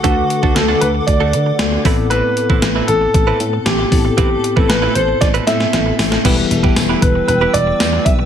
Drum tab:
CC |----------------|----------------|----------------|x---------------|
HH |x-x-x-x-x-x-x-o-|x-x-x-x-x-x-x-o-|x-x-x-x-xxx-x-o-|x-x-x-x-x-x-x-x-|
TB |----------------|----------------|----------------|----x-------x---|
SD |----o-------o---|----o-------o---|----o---o-ooo-oo|----o-------o---|
BD |o--o----o-----o-|---o----o-----o-|o--o----o-------|o--o--o-------o-|